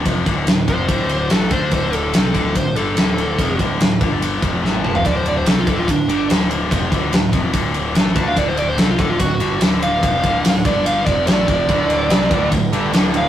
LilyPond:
<<
  \new Staff \with { instrumentName = "Lead electric guitar" } { \time 4/4 \key g \major \tempo 4 = 144 r4. c''4. a'8 c''8 | c''8 a'4. c''8 a'4.~ | a'8 r2. a''16 f''16 | d''16 c''16 d''16 c''16 a'16 f'16 a'16 f'16 d'4 r4 |
r2. r8 a''16 f''16 | d''16 c''16 d''16 c''16 a'16 f'16 a'16 f'16 fis'4 r8 f''8~ | f''4. d''8 f''8 d''8 d''4~ | d''2 r4. f''8 | }
  \new Staff \with { instrumentName = "French horn section" } { \clef bass \time 4/4 \key g \major r1 | r1 | r1 | r1 |
r1 | r1 | r1 | <d e a>1 | }
  \new Staff \with { instrumentName = "Distorted electric guitar" } { \clef bass \time 4/4 \key g \major <f, c f>8 <d, a, d>8 <d, a,>8 <f, c f>8 <d, a, d>4 <a, e a>8 <d a d'>8 | <d, a, d>4 <c g c'>8 <d, a, d>8 <d, a,>8 <g, d g>8 <d, a, d>4 | <f, c f>8 <d, a, d>8 <d, a,>8 <g, d g>4 <f, c f>8 <a, e a>8 <f, c f>8 | <d, a, d>4 <c g c'>8 <d, a, d>8 <d, a,>8 <g, d g>8 <d, a, d>4 |
<f, c f>8 <d, a, d>8 <d, a,>8 <f, c f>8 <d, a, d>4 <a, e a>8 <d a d'>8 | <d, a, d>4 <c g c'>8 <d, a, d>8 <d, a,>8 <g, d g>8 <d, a, d>4 | <f, c f>8 <d, a, d>8 <d, a,>8 <g, d g>4 <f, c f>8 <a, e a>8 <f, c f>8 | <d, a, d>4 <c g c'>8 <d, a, d>8 <d, a,>8 <g, d g>8 <d, a, d>4 | }
  \new Staff \with { instrumentName = "Overdriven electric guitar" } { \clef bass \time 4/4 \key g \major r1 | r1 | r1 | r1 |
r1 | r1 | r1 | <d, a, d>4 <c g c'>8 <d, a, d>8 <d, a,>8 <g, d g>8 <d, a, d>4 | }
  \new Staff \with { instrumentName = "Picked electric bass" } { \clef bass \time 4/4 \key g \major f,,8 d,,8 d,,8 f,,8 d,,4 a,,8 d,8 | d,,4 c,8 d,,8 d,,8 g,,8 d,,4 | f,,8 d,,8 d,,8 g,,4 f,,8 a,,8 f,,8 | d,,4 c,8 d,,8 d,,8 g,,8 d,,4 |
f,,8 d,,8 d,,8 f,,8 d,,4 a,,8 d,8 | d,,4 c,8 d,,8 d,,8 g,,8 d,,4 | f,,8 d,,8 d,,8 g,,4 f,,8 a,,8 f,,8 | d,,4 c,8 d,,8 d,,8 g,,8 d,,4 | }
  \new DrumStaff \with { instrumentName = "Drums" } \drummode { \time 4/4 <bd cymr>8 <bd cymr>8 <cymr sn>8 <bd cymr>8 <bd cymr>8 cymr8 <cymr sn>8 <bd cymr>8 | <bd cymr>8 cymr8 <cymr sn>8 <bd cymr>8 <bd cymr>8 cymr8 <cymr sn>8 cymr8 | <bd cymr>8 <bd cymr>8 <cymr sn>16 sn16 <bd cymr>8 cymr8 <bd cymr>8 sn16 tommh16 toml16 tomfh16 | <bd cymr>8 cymr8 <cymr sn>8 <bd cymr>8 <bd cymr>8 cymr8 <cymr sn>8 cymr8 |
<bd cymr>8 <bd cymr>8 <cymr sn>16 sn16 <bd cymr>8 <bd cymr>8 cymr8 <cymr sn>8 <bd cymr>8 | <bd cymr>8 cymr8 <cymr sn>8 <bd cymr>8 <bd cymr>8 cymr8 <cymr sn>8 cymr8 | <bd cymr>8 <bd cymr>8 <cymr sn>16 sn16 <bd cymr>8 cymr8 <bd cymr>8 <cymr sn>8 <bd cymr>8 | <bd cymr>8 cymr8 <cymr sn>8 <bd cymr>8 <bd cymr>8 cymr8 <cymr sn>8 cymr8 | }
>>